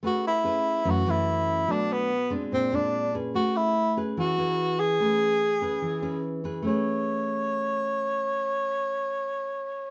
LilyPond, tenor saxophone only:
\new Staff \with { instrumentName = "Tenor saxophone" } { \time 4/4 \key a \major \tempo 4 = 145 fis'8 e'4. fis'8 e'4. | d'8 b4 r8 c'8 d'4 r8 | fis'8 e'4 r8 fis'4. gis'8~ | gis'2. r4 |
cis''1~ | cis''1 | }